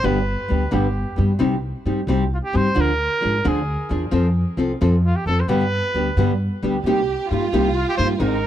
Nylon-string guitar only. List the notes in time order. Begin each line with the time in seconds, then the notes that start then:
0.03 G2 D3 G3 B3 D4 G4
0.48 G3 B3 D4 G4
0.71 G2 D3 G3 B3 D4 G4
1.16 G3 B3 D4 G4
1.39 C3 G3 C4 D#4 G4
1.86 G3 C4 D#4 G4
2.08 C3 G3 C4 D#4 G4
2.53 G3 C4 D#4 G4
2.75 D3 F3 D4 F4 G#4
3.20 F3 D4 F4 G#4
3.45 D3 F3 D4 F4 G#4
3.89 F3 D4 F4 G#4
4.11 F3 C4 F4 A4
4.57 F3 C4 F4 A4
4.81 F3 C4 F4 A4
5.27 F3 C4 F4 A4
5.48 G2 D3 G3 B3 D4 G4
5.95 G3 B3 D4 G4
6.17 G2 D3 G3 B3 D4 G4
6.62 G3 B3 D4 G4
6.86 C3 G3 A#3 D#4 G4
7.31 G3 A#3 D#4 G4
7.52 C3 G3 A#3 D#4 G4
7.97 G3 A#3 D#4 G4
8.20 G#2 D#3 G#3 C4 D#4 G#4